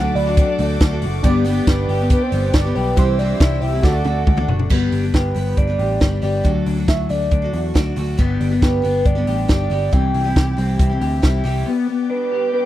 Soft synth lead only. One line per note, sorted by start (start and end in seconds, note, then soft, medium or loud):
0.00 0.17 F#5 loud
0.15 1.02 D5 loud
1.68 2.08 B4 medium
2.12 2.24 B4 medium
2.23 2.56 C5 medium
2.55 2.77 D5 loud
2.75 2.99 B4 medium
2.97 3.20 C5 medium
3.19 3.61 D5 loud
3.62 3.86 E5 loud
3.84 4.49 F#5 loud
5.15 5.59 B4 medium
5.58 6.22 D5 loud
6.23 6.63 D5 medium
6.88 7.12 E5 loud
7.10 7.97 D5 loud
8.62 9.08 B4 medium
9.06 9.49 D5 loud
9.49 9.95 D5 loud
9.93 11.23 G5 loud
12.10 12.50 B4 medium
12.54 12.63 B4 medium